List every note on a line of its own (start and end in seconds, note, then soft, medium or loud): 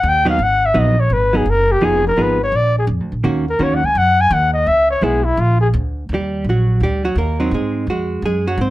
0.00 0.38 D#2 loud
0.00 0.10 F#5 loud
0.09 0.28 G5 loud
0.25 0.37 F#3 medium
0.25 0.38 B3 medium
0.25 0.38 D#4 medium
0.25 0.45 F5 loud
0.39 0.73 G#1 medium
0.43 0.67 F#5 loud
0.66 0.80 E5 loud
0.74 1.09 A#1 medium
0.74 0.95 F#3 medium
0.74 0.95 B3 medium
0.74 0.95 D#4 medium
0.79 1.02 D#5 medium
1.00 1.14 C#5 medium
1.10 1.44 G#1 medium
1.10 1.38 B4 medium
1.33 1.44 F#3 medium
1.33 1.45 B3 medium
1.33 1.45 D#4 medium
1.33 1.52 G#4 medium
1.46 1.80 F#1 medium
1.50 1.73 A#4 loud
1.72 1.86 G4 medium
1.81 2.16 F1 medium
1.81 2.02 F3 medium
1.81 2.02 B3 medium
1.81 2.02 D#4 medium
1.81 2.03 G#4 medium
1.81 2.06 G#4 medium
2.08 2.23 A#4 loud
2.17 2.51 G#1 medium
2.17 2.38 F3 medium
2.17 2.38 B3 medium
2.17 2.38 D#4 medium
2.17 2.38 G#4 medium
2.22 2.42 B4 medium
2.44 2.58 C#5 loud
2.52 2.87 A#1 medium
2.56 2.77 D5 loud
2.79 2.85 G#4 medium
2.87 3.00 F2 loud
3.00 3.11 D2 medium
3.12 3.23 A#1 medium
3.24 3.58 D#2 medium
3.24 3.44 D#3 medium
3.24 3.44 A#3 medium
3.24 3.45 C#4 medium
3.24 3.45 F#4 medium
3.49 3.64 A#4 loud
3.59 3.71 E2 medium
3.59 3.80 D#3 medium
3.59 3.80 A#3 medium
3.59 3.81 C#4 medium
3.59 3.81 F#4 medium
3.59 3.77 C#5 medium
3.71 3.83 D#2 medium
3.71 3.87 F#5 medium
3.83 3.94 C#2 medium
3.83 3.99 G#5 loud
3.95 4.29 F#2 medium
3.95 4.22 F#5 loud
4.21 4.35 G#5 loud
4.30 4.65 D#2 loud
4.30 4.53 F#5 loud
4.53 4.69 D#5 loud
4.66 5.01 C#2 medium
4.66 4.90 E5 loud
4.90 5.05 C#5 loud
5.01 5.36 B1 medium
5.01 5.23 G#3 medium
5.01 5.23 B3 medium
5.01 5.23 E4 medium
5.01 5.26 G#4 medium
5.24 5.42 E4 medium
5.37 5.72 A#1 medium
5.37 5.60 F4 loud
5.61 5.68 G#4 medium
5.74 6.08 D2 loud
6.09 6.43 D#2 medium
6.14 6.45 G3 medium
6.14 6.45 G4 medium
6.44 6.79 A#1 medium
6.49 6.80 F#3 medium
6.49 6.80 F#4 medium
6.80 7.15 D2 medium
6.80 7.04 G3 medium
6.80 7.04 G4 medium
7.05 7.16 F#3 medium
7.05 7.16 F#4 medium
7.16 7.50 D#2 loud
7.16 7.39 A#3 medium
7.16 7.50 A#4 medium
7.40 7.54 F#3 medium
7.40 7.85 C4 medium
7.40 7.85 D#4 medium
7.51 7.86 G#2 medium
7.51 7.86 G#3 medium
7.51 7.86 G#4 medium
7.87 8.22 F2 medium
7.87 8.22 G#3 medium
7.87 8.22 F#4 medium
8.22 8.57 F#2 medium
8.22 8.47 G#3 medium
8.22 8.47 G#4 medium
8.47 8.59 F#3 medium
8.47 8.59 F#4 medium
8.58 8.70 G#2 loud
8.58 8.70 C4 medium
8.58 8.70 C5 medium